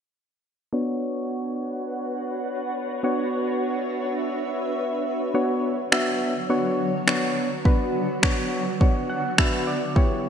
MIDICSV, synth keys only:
0, 0, Header, 1, 2, 480
1, 0, Start_track
1, 0, Key_signature, 2, "minor"
1, 0, Tempo, 576923
1, 607, Time_signature, 4, 2, 24, 8
1, 8561, End_track
2, 0, Start_track
2, 0, Title_t, "Synth keys"
2, 0, Program_c, 0, 88
2, 604, Note_on_c, 0, 59, 68
2, 606, Note_on_c, 0, 62, 63
2, 609, Note_on_c, 0, 66, 62
2, 611, Note_on_c, 0, 73, 73
2, 2492, Note_off_c, 0, 59, 0
2, 2493, Note_off_c, 0, 62, 0
2, 2495, Note_off_c, 0, 66, 0
2, 2496, Note_off_c, 0, 73, 0
2, 2523, Note_on_c, 0, 59, 67
2, 2526, Note_on_c, 0, 62, 62
2, 2529, Note_on_c, 0, 66, 63
2, 2532, Note_on_c, 0, 73, 74
2, 4412, Note_off_c, 0, 59, 0
2, 4413, Note_off_c, 0, 62, 0
2, 4415, Note_off_c, 0, 66, 0
2, 4416, Note_off_c, 0, 73, 0
2, 4445, Note_on_c, 0, 59, 73
2, 4446, Note_on_c, 0, 62, 69
2, 4447, Note_on_c, 0, 66, 68
2, 4449, Note_on_c, 0, 73, 83
2, 4790, Note_off_c, 0, 59, 0
2, 4791, Note_off_c, 0, 62, 0
2, 4792, Note_off_c, 0, 66, 0
2, 4793, Note_off_c, 0, 73, 0
2, 4924, Note_on_c, 0, 59, 81
2, 4926, Note_on_c, 0, 62, 77
2, 4927, Note_on_c, 0, 66, 77
2, 4928, Note_on_c, 0, 76, 90
2, 5270, Note_off_c, 0, 59, 0
2, 5271, Note_off_c, 0, 62, 0
2, 5272, Note_off_c, 0, 66, 0
2, 5272, Note_off_c, 0, 76, 0
2, 5404, Note_on_c, 0, 59, 81
2, 5405, Note_on_c, 0, 62, 71
2, 5407, Note_on_c, 0, 66, 72
2, 5408, Note_on_c, 0, 73, 88
2, 5750, Note_off_c, 0, 59, 0
2, 5751, Note_off_c, 0, 62, 0
2, 5751, Note_off_c, 0, 66, 0
2, 5752, Note_off_c, 0, 73, 0
2, 5884, Note_on_c, 0, 59, 85
2, 5885, Note_on_c, 0, 62, 79
2, 5886, Note_on_c, 0, 66, 74
2, 5888, Note_on_c, 0, 73, 89
2, 6230, Note_off_c, 0, 59, 0
2, 6231, Note_off_c, 0, 62, 0
2, 6231, Note_off_c, 0, 66, 0
2, 6232, Note_off_c, 0, 73, 0
2, 6364, Note_on_c, 0, 59, 86
2, 6365, Note_on_c, 0, 62, 81
2, 6367, Note_on_c, 0, 66, 75
2, 6368, Note_on_c, 0, 71, 99
2, 6710, Note_off_c, 0, 59, 0
2, 6711, Note_off_c, 0, 62, 0
2, 6711, Note_off_c, 0, 66, 0
2, 6712, Note_off_c, 0, 71, 0
2, 6843, Note_on_c, 0, 59, 93
2, 6844, Note_on_c, 0, 62, 82
2, 6846, Note_on_c, 0, 66, 85
2, 6848, Note_on_c, 0, 73, 97
2, 7190, Note_off_c, 0, 59, 0
2, 7190, Note_off_c, 0, 62, 0
2, 7191, Note_off_c, 0, 66, 0
2, 7192, Note_off_c, 0, 73, 0
2, 7324, Note_on_c, 0, 59, 78
2, 7325, Note_on_c, 0, 62, 75
2, 7327, Note_on_c, 0, 66, 69
2, 7328, Note_on_c, 0, 73, 83
2, 7567, Note_on_c, 0, 78, 70
2, 7670, Note_off_c, 0, 59, 0
2, 7671, Note_off_c, 0, 62, 0
2, 7672, Note_off_c, 0, 66, 0
2, 7672, Note_off_c, 0, 73, 0
2, 7790, Note_off_c, 0, 78, 0
2, 7804, Note_on_c, 0, 59, 83
2, 7805, Note_on_c, 0, 62, 80
2, 7806, Note_on_c, 0, 76, 75
2, 7807, Note_on_c, 0, 66, 79
2, 7808, Note_on_c, 0, 71, 93
2, 8030, Note_off_c, 0, 76, 0
2, 8046, Note_on_c, 0, 74, 68
2, 8150, Note_off_c, 0, 59, 0
2, 8151, Note_off_c, 0, 62, 0
2, 8152, Note_off_c, 0, 66, 0
2, 8152, Note_off_c, 0, 71, 0
2, 8270, Note_off_c, 0, 74, 0
2, 8283, Note_on_c, 0, 59, 76
2, 8285, Note_on_c, 0, 64, 71
2, 8286, Note_on_c, 0, 67, 71
2, 8287, Note_on_c, 0, 73, 80
2, 8561, Note_off_c, 0, 59, 0
2, 8561, Note_off_c, 0, 64, 0
2, 8561, Note_off_c, 0, 67, 0
2, 8561, Note_off_c, 0, 73, 0
2, 8561, End_track
0, 0, End_of_file